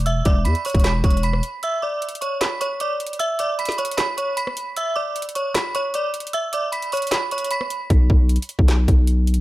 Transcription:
Already playing: E1
0.06 E5 E6, closed hi-hat
0.25 E1 D5 D6, kick, closed hi-hat
0.45 E2 B5 B6, closed hi-hat
0.55 closed hi-hat
0.65 C#5 C#6, closed hi-hat, open hi-hat
0.70 closed hi-hat
0.74 E1, kick, closed hi-hat
0.79 closed hi-hat
0.84 B5 B6, snare, clap, closed hi-hat
1.04 E1 C#5 C#6, kick, closed hi-hat
1.10 closed hi-hat
1.17 closed hi-hat
1.23 B5 B6, closed hi-hat
1.33 cross-stick
1.43 closed hi-hat
1.63 E5 E6, closed hi-hat
1.82 D5 D6
2.02 closed hi-hat
2.09 closed hi-hat
2.15 closed hi-hat
2.21 C#5 C#6, closed hi-hat
2.41 B5 B6, snare, clap, closed hi-hat
2.61 C#5 C#6, closed hi-hat
2.80 D5 D6, closed hi-hat
3.00 closed hi-hat
3.07 closed hi-hat
3.13 closed hi-hat
3.19 E5 E6, closed hi-hat
3.39 D5 D6, closed hi-hat
3.59 B5 B6, closed hi-hat
3.65 snare, closed hi-hat
3.72 closed hi-hat
3.78 C#5 C#6, closed hi-hat
3.85 closed hi-hat
3.91 closed hi-hat
3.97 B5 B6, snare, clap, closed hi-hat
4.17 C#5 C#6, closed hi-hat
4.37 B5 B6, closed hi-hat
4.47 cross-stick
4.57 closed hi-hat
4.76 E5 E6, closed hi-hat
4.96 D5 D6
5.16 closed hi-hat
5.22 closed hi-hat
5.29 closed hi-hat
5.35 C#5 C#6, closed hi-hat
5.55 B5 B6, snare, clap, closed hi-hat
5.75 C#5 C#6, closed hi-hat
5.94 D5 D6, closed hi-hat
6.14 closed hi-hat
6.20 closed hi-hat
6.27 closed hi-hat
6.33 E5 E6, closed hi-hat
6.53 D5 D6, closed hi-hat
6.72 B5 B6, closed hi-hat
6.82 closed hi-hat
6.92 C#5 C#6, closed hi-hat, open hi-hat
6.97 closed hi-hat
7.02 closed hi-hat
7.07 closed hi-hat
7.11 B5 B6, snare, clap, closed hi-hat
7.31 C#5 C#6, closed hi-hat
7.38 closed hi-hat
7.44 closed hi-hat
7.51 B5 B6, closed hi-hat
7.61 cross-stick
7.70 closed hi-hat
7.90 B1, kick, closed hi-hat
8.10 B1, kick
8.29 closed hi-hat
8.36 closed hi-hat
8.42 closed hi-hat
8.49 closed hi-hat
8.59 B1, kick
8.68 snare, clap, closed hi-hat
8.88 B1, kick, closed hi-hat
9.07 closed hi-hat
9.27 closed hi-hat
9.34 A1, closed hi-hat

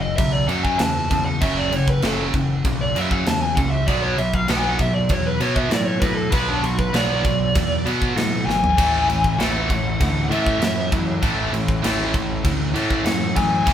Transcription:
Already playing: F#1 F#2 C#3
0.01 D#5
0.16 B1 F#2 C#3 E5, kick, crash
0.32 D5
0.48 F#2 C#3 F#3 F#5, crash
0.63 G#5, kick
0.79 E2 F#2 C#3 A5, snare, crash
1.10 E2 F#2 C#3, kick, crash
1.25 F#5
1.40 F#1 F#2 C#3 F#3 E5, kick, crash
1.57 D5
1.72 F#1 F#2 C#3 C#5, crash
1.88 B4, kick
2.02 F#1 F#2 C#3 F#3 A4, snare, crash
2.34 F#1 F#2 C#3, kick, crash
2.64 B1 F#2 C#3, kick, crash
2.81 D5
2.95 F#2 C#3 F#3 E5, crash
3.11 F#5, kick
3.26 E2 F#2 C#3 A5, snare, crash
3.41 G#5
3.55 C#2 F#2 C#3 F#5, kick, crash
3.71 E5
3.87 B1 B2 F#3 B3 D5, kick, crash
4.02 C#5
4.18 B1 B2 F#3 E5, crash
4.34 F5, kick
4.48 B1 B2 F#3 B3 F#5, snare, crash
4.59 G#5
4.69 F#5
4.79 B1 B2 F#3 E5, kick, crash
4.94 D5
5.09 E2 B2 F#3 C#5, kick, crash
5.26 B4
5.40 B2 F#3 B3 C#5, crash
5.56 E5, kick
5.70 A2 B2 F#3 D5, snare, crash
5.85 C#5
6.00 A2 B2 F#3 B4, kick, crash
6.15 A4
6.31 B1 B2 F#3 B3 B4, kick, crash
6.48 D4
6.62 B1 B2 F#3 F#4, crash
6.78 B4, kick
6.93 B1 B2 F#3 B3 D5, snare, crash
7.24 B1 B2 F#3, kick, crash
7.55 E2 B2 F#3, kick, crash
7.85 B2 F#3 B3, crash
8.02 kick
8.16 A2 B2 F#3 F#5, snare, crash
8.46 G#1 B2 F#3 G#5, snare
8.64 floor tom
8.77 A1 A2 E3 A3 C#4 E4, kick, crash
9.08 A1 A2 E3, crash
9.24 kick
9.38 A1 A2 E3 A3 C#4 E4 F#5, snare, crash
9.69 A1 A2 E3 A3 C#4 E4, kick, crash
10.00 D2 A2 E3 A3 C#4 E4, kick, crash
10.29 A2 E3 A3 E5, crash
10.46 kick
10.60 F#2 A2 E3 A3 C#4 E4, snare, crash
10.91 F#2 A2 E3 A3 C#4 E4, kick, crash
11.22 A1 A2 E3 A3 C#4 E4, kick, crash
11.52 A1 A2 E3, crash
11.68 kick
11.83 A1 A2 E3 A3 C#4 E4, snare, crash
12.13 A1 A2 E3 A3 C#4 E4, kick, crash
12.44 D2 A2 E3 A3 C#4 E4, kick, crash
12.74 A2 E3 A3, crash
12.90 kick
13.04 F#2 A2 E3 A3 C#4 E4 F#5, snare, crash
13.35 F#2 A2 E3 A3 C#4 E4 G#5, kick, crash
13.65 E1 E2 B2 E3 G#3 B3 E4, kick, crash

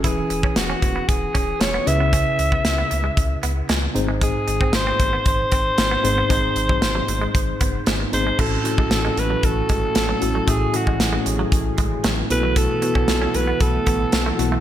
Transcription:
0.04 E1 E3 C#4 E4 G#4 B4, kick, closed hi-hat
0.30 E1, muted clean electric guitar stroke, closed hi-hat
0.43 C#4, kick
0.56 E1 F#4, snare, closed hi-hat
0.70 C#4
0.82 E1, muted clean electric guitar stroke, kick, closed hi-hat
0.96 B3
1.08 E1 G#4, kick, closed hi-hat
1.35 D#1 C#4, kick, closed hi-hat
1.60 E1 C#5, snare, closed hi-hat
1.74 B3
1.86 C#2 C#3 C#4 E4 G#4 B4 E5, muted clean electric guitar stroke, closed hi-hat
2.00 B3
2.13 C#4, kick, closed hi-hat
2.39 C#2, muted clean electric guitar stroke, closed hi-hat
2.52 B3, kick
2.65 C#2, snare, closed hi-hat
2.78 B3
2.91 C#2, muted clean electric guitar stroke, closed hi-hat
3.04 G#3
3.17 C#2, kick, closed hi-hat
3.43 C#2 B3, closed hi-hat
3.69 C#2 G#3, snare, closed hi-hat
3.82 muted clean electric guitar stroke
3.94 G#1 G#2 C4 D#4 G#4 C5, closed hi-hat
4.08 G#3
4.21 G#3 G#4, kick, closed hi-hat
4.48 G#1, muted clean electric guitar stroke, closed hi-hat
4.61 C4, kick
4.73 G#1 C5, snare, closed hi-hat
4.87 C4
5.00 G#1, muted clean electric guitar stroke, kick, closed hi-hat
5.13 B3
5.26 G#1 C5, kick, closed hi-hat
5.52 G#1 C4, kick, closed hi-hat
5.78 G#1, snare, closed hi-hat
5.91 B3
6.03 G#1 G#2 C4 D#4 G#4 C5, muted clean electric guitar stroke, closed hi-hat
6.18 B3
6.29 G#1 G#3 C4 D#4 G#4 C5, kick, closed hi-hat
6.56 G#1, muted clean electric guitar stroke, closed hi-hat
6.69 F#3, kick
6.82 G#1, snare, closed hi-hat
6.95 F#3
7.08 G#1, muted clean electric guitar stroke, closed hi-hat
7.21 G#3
7.35 G#1, kick, closed hi-hat
7.61 F#1 B3, kick, closed hi-hat
7.86 G#1 G#3, snare, closed hi-hat
8.00 muted clean electric guitar stroke
8.12 G#1 C4 D#4 G#4 C5, closed hi-hat
8.27 G#3
8.38 A1 A2 E3 A3 C#4 E4 F#4 A4, kick, crash
8.64 C#4 E4 F#4 A4, muted clean electric guitar stroke, closed hi-hat
8.78 A1 G#3, kick
8.91 A1, snare, closed hi-hat
9.05 G#3
9.17 A1 B4, muted clean electric guitar stroke, closed hi-hat
9.30 F#3
9.43 A1 A4, kick, closed hi-hat
9.69 G#1 G#3, kick, closed hi-hat
9.95 A1, snare, closed hi-hat
10.09 F#3
10.21 A1 C#4 E4 F#4 A4, muted clean electric guitar stroke, closed hi-hat
10.35 F#3
10.46 A1 A2 A3 C#4 E4 F#4 G#4 A4, kick, closed hi-hat
10.73 C#4 E4 F#4 G#4, muted clean electric guitar stroke, closed hi-hat
10.87 A1 G#3, kick
11.00 A1, snare, closed hi-hat
11.13 G#3
11.26 A1, muted clean electric guitar stroke, closed hi-hat
11.39 F#3
11.52 A1, kick, closed hi-hat
11.78 G#1 G#3, kick, closed hi-hat
12.04 A1 F#3, snare, closed hi-hat
12.18 muted clean electric guitar stroke
12.30 B1 B2 A3 B3 E4 F#4 A4 B4, closed hi-hat
12.43 F#3
12.56 B3 A4, kick, closed hi-hat
12.82 B3 E4 F#4 B4, muted clean electric guitar stroke, closed hi-hat
12.95 B1 C#4, kick
13.08 B1, snare, closed hi-hat
13.22 C#4
13.34 B1 B4, muted clean electric guitar stroke, closed hi-hat
13.47 B3
13.60 B1 A4, kick, closed hi-hat
13.87 A1 B3, kick, closed hi-hat
14.12 B1, snare, closed hi-hat
14.26 A3
14.38 B1 B2 B3 E4 F#4 A4, muted clean electric guitar stroke, closed hi-hat
14.52 A3

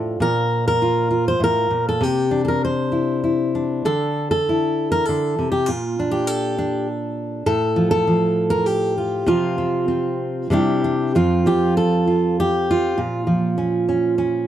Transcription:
Already playing: A2 F3 D4 F4 A4
0.20 A#2 A#4
0.68 A#4
0.82 F4
1.11 F4
1.28 C5
1.40 A2 A#4
1.70 A#2
1.89 A4
2.01 C3 G4
2.31 D4
2.45 A4 A#4
2.65 C5
2.92 E4
3.24 E4
3.55 D4
3.85 D3 A4
4.31 A4
4.49 E4
4.92 A#4
5.05 D3 A4
5.39 C3
5.52 G4
5.66 A#2 F4
5.99 D4
6.11 G4
6.27 A4
6.58 D4
7.46 A2 A4
7.76 F3
7.91 A4
8.07 F3
8.50 A#4
8.66 G4
8.98 F4
9.26 C3 F3 C4 F4
9.58 C4
9.88 C4
10.50 C3 G3 D4 E4 G4
10.84 D4
11.15 F2 F3 C4 F4
11.46 F3 G4
11.77 A4
12.08 F4
12.40 G4
12.71 F4
12.98 A#2
13.27 F3
13.58 C#4
13.89 C#4
14.18 C#4

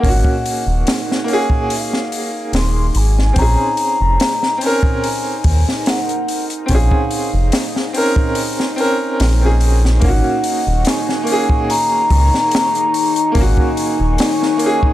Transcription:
Already playing: D#4 G#4 F#5
0.00 G#1 A#3, kick
0.04 C#4, open hi-hat
0.08 F#4
0.25 kick
0.46 open hi-hat
0.66 D#1
0.87 snare, open hi-hat
1.12 snare
1.24 A#3
1.28 C#4, open hi-hat
1.33 G#4
1.50 kick
1.70 F5, open hi-hat
1.93 snare
2.12 open hi-hat
2.53 D#1 C6, snare, open hi-hat
2.95 G#1 G#5, open hi-hat
3.19 snare
3.33 A#1 C4, kick, open hi-hat
3.38 C#4 A#5
3.42 G#4
3.77 open hi-hat
4.01 F1
4.20 snare, open hi-hat
4.43 snare
4.58 C4, open hi-hat
4.62 C#4 G#5
4.66 A#4
4.83 kick
5.04 open hi-hat
5.44 D#2, kick, open hi-hat
5.69 snare
5.86 F#5, snare, open hi-hat
6.09 closed hi-hat
6.28 open hi-hat
6.50 closed hi-hat
6.66 A#1 C4, kick, open hi-hat
6.70 C#4 F5
6.75 G#4
6.91 kick
7.11 open hi-hat
7.33 F1
7.52 snare, open hi-hat
7.76 snare
7.93 C4 C#4, open hi-hat
7.97 A#4
8.16 kick
8.35 open hi-hat
8.60 snare
8.76 C4 C#4, open hi-hat
8.80 A#4
9.20 A#1, snare, open hi-hat
9.41 C4 C#4
9.45 G#4
9.61 open hi-hat
9.85 snare
10.00 G#1 A#3 D#4 F#5 C#6, kick, open hi-hat
10.04 C#4
10.08 F#4
10.44 open hi-hat
10.67 D#1
10.85 G#5, snare, open hi-hat
11.09 snare
11.23 A#3, open hi-hat
11.28 C#4
11.32 G#4
11.50 kick
11.69 A#5, open hi-hat
12.10 C#2, kick, open hi-hat
12.34 snare
12.51 snare, open hi-hat
12.75 closed hi-hat
12.94 open hi-hat
13.16 closed hi-hat
13.32 G#1 A#3, kick, open hi-hat
13.36 C#4 G#5
13.40 F#4
13.57 kick
13.77 open hi-hat
14.00 D#1
14.18 snare, open hi-hat
14.43 snare
14.57 A#3, open hi-hat
14.62 C#4
14.66 G#4
14.83 kick

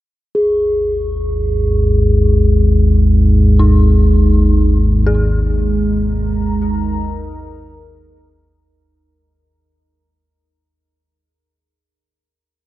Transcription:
0.35 G#1 D#2 G#4
3.59 D#4
4.49 G#3
5.07 G#4
5.29 A#5
6.11 D#4
6.34 A#4

